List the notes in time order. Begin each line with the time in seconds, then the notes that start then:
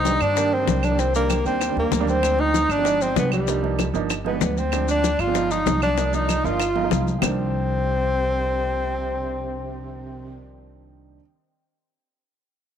Already playing: C2 D#4
0.05 D#3 G3 A#3 D4, high bongo, high conga, maracas
0.21 G2 D4, high bongo, high conga, claves, maracas
0.35 D#3 G3 A#3 D4, high bongo, high conga, maracas
0.52 C4, high conga
0.59 D#3 G3 A#3 D4
0.67 C2, high bongo, low bongo, high conga, maracas
0.83 D4, high bongo, high conga, claves, maracas
0.90 D#3 G3 A#3 D4
0.98 C4, high bongo, high conga, maracas
1.14 D#3 G3 A#3 D4, high bongo, high conga, maracas
1.30 high bongo, high conga, claves, maracas
1.45 D#2 D#3 G3 A#3 C4 D4, high bongo, high conga, maracas
1.61 high bongo, high conga, claves, maracas
1.68 D#3 G3 A#3 D4
1.76 D#2 A#3, high bongo, high conga
1.91 D2, high bongo, low bongo, high conga, maracas
1.99 D#3 G3 A#3 D4
2.07 C4, high conga, maracas
2.23 F3 G#3 C4 D4, high bongo, high conga, claves, maracas
2.39 D#4, high bongo, high conga
2.54 high bongo, high conga, maracas
2.69 G1 D4, high bongo, high conga, claves, maracas
2.77 F3 G#3 C4 D4
2.85 F3 G#3 B3 D#4, high bongo, high conga, maracas
3.01 C4, high conga, maracas
3.15 C2 F3 G#3 B3 D4, high bongo, low bongo, high conga, maracas
3.32 G3, high bongo, high conga, claves, maracas
3.47 F3 A#3 D4 D#4, high bongo, high conga, maracas
3.62 F3 A#3 D4 D#4, high bongo, high conga
3.79 high bongo, high conga, claves, maracas
3.93 G1 F3 A#3 D4 D#4, high bongo, high conga, maracas
4.10 high bongo, high conga, claves, maracas
4.25 F3 G#3 B3 D#4, high bongo, high conga
4.33 F3 G#3 B3 D4
4.41 D2, high bongo, low bongo, high conga, maracas
4.57 C4, maracas
4.72 F3 G#3 C4 D4, high bongo, high conga, claves, maracas
4.88 D4, high bongo, high conga, maracas
5.04 high bongo, high conga, maracas
5.19 G1 F4, high bongo, high conga, claves, maracas
5.27 F3 G#3 C4 D4
5.34 F3 G#3 B3 D#4, high bongo, high conga, maracas
5.51 D#4, high conga, maracas
5.66 C2 F3 G#3 B3 D#4, high bongo, low bongo, high conga, maracas
5.82 D4, high bongo, high conga, claves, maracas
5.97 F3 A#3 D4 D#4, high bongo, high conga, maracas
6.12 F3 A#3 D4 D#4, high bongo, high conga, maracas
6.29 high bongo, high conga, claves, maracas
6.44 G1 F3 A#3 D4 D#4 F4, high bongo, high conga, maracas
6.60 high bongo, high conga, claves, maracas
6.75 F3 G#3 B3 D#4, high bongo, high conga
6.83 F3 G#3 B3 D#4
6.91 C2, high bongo, low bongo, high conga, maracas
7.07 high conga, maracas
7.19 C2 C3 D#3 F3, low bongo, claves
7.23 A#3 C4 D4, low conga, maracas